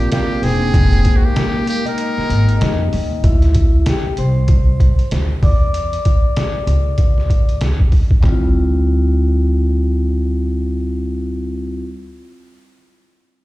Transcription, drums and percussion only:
0.00 closed hi-hat soft
0.12 snare loud
0.12 closed hi-hat medium
0.43 open hi-hat medium
0.74 kick loud
0.74 closed hi-hat medium
0.93 closed hi-hat medium
1.05 kick medium
1.05 closed hi-hat medium
1.36 snare loud
1.36 closed hi-hat loud
1.67 closed hi-hat medium
1.86 closed hi-hat soft
1.98 closed hi-hat medium
2.18 snare soft
2.30 closed hi-hat medium
2.49 closed hi-hat soft
2.61 snare loud
2.61 closed hi-hat medium
2.93 open hi-hat medium
3.24 kick loud
3.24 closed hi-hat medium
3.42 snare soft
3.42 closed hi-hat soft
3.55 kick medium
3.55 closed hi-hat medium
3.86 snare loud
3.86 closed hi-hat loud
4.17 closed hi-hat medium
4.48 kick medium
4.48 closed hi-hat medium
4.80 kick medium
4.80 closed hi-hat medium
4.99 closed hi-hat soft
5.11 snare loud
5.11 closed hi-hat medium
5.43 kick loud
5.43 open hi-hat soft
5.74 closed hi-hat medium
5.93 closed hi-hat soft
6.05 kick medium
6.05 closed hi-hat medium
6.36 snare loud
6.36 closed hi-hat loud
6.67 closed hi-hat medium
6.98 kick medium
6.98 closed hi-hat medium
7.18 snare soft
7.30 kick medium
7.30 closed hi-hat medium
7.49 closed hi-hat soft
7.61 snare medium
7.61 closed hi-hat medium
7.80 kick medium
7.92 kick medium
7.92 open hi-hat soft
8.11 kick medium
8.24 kick medium
8.24 clap medium
8.24 floor tom medium

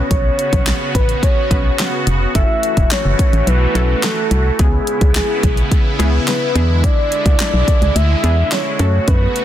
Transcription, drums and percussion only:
0.11 kick loud
0.11 closed hi-hat medium
0.39 closed hi-hat medium
0.53 kick loud
0.53 closed hi-hat medium
0.67 snare medium
0.67 clap loud
0.67 closed hi-hat medium
0.95 kick medium
0.95 closed hi-hat medium
1.09 closed hi-hat soft
1.23 kick medium
1.23 closed hi-hat medium
1.51 kick loud
1.51 closed hi-hat medium
1.79 snare medium
1.79 clap loud
1.79 closed hi-hat medium
2.07 closed hi-hat medium
2.35 kick loud
2.35 closed hi-hat medium
2.63 closed hi-hat medium
2.77 kick medium
2.77 closed hi-hat medium
2.91 snare medium
2.91 clap loud
2.91 closed hi-hat medium
3.19 kick medium
3.19 closed hi-hat medium
3.33 closed hi-hat soft
3.47 closed hi-hat medium
3.75 closed hi-hat medium
4.03 snare medium
4.03 clap loud
4.03 closed hi-hat medium
4.31 closed hi-hat medium
4.59 kick loud
4.59 closed hi-hat medium
4.87 closed hi-hat medium
5.01 kick loud
5.01 closed hi-hat medium
5.15 snare medium
5.15 clap loud
5.15 closed hi-hat medium
5.43 kick medium
5.43 closed hi-hat medium
5.57 closed hi-hat soft
5.71 kick medium
5.71 closed hi-hat medium
6.00 closed hi-hat medium
6.28 snare medium
6.28 clap loud
6.28 closed hi-hat medium
6.56 closed hi-hat medium
6.84 kick loud
6.84 closed hi-hat medium
7.12 closed hi-hat medium
7.26 kick loud
7.26 closed hi-hat medium
7.40 snare medium
7.40 clap loud
7.40 closed hi-hat medium
7.68 kick loud
7.68 closed hi-hat medium
7.82 closed hi-hat soft
7.96 closed hi-hat medium
8.24 closed hi-hat medium
8.52 snare medium
8.52 clap loud
8.52 closed hi-hat medium
8.79 closed hi-hat medium
9.08 kick loud
9.08 closed hi-hat medium
9.36 closed hi-hat medium

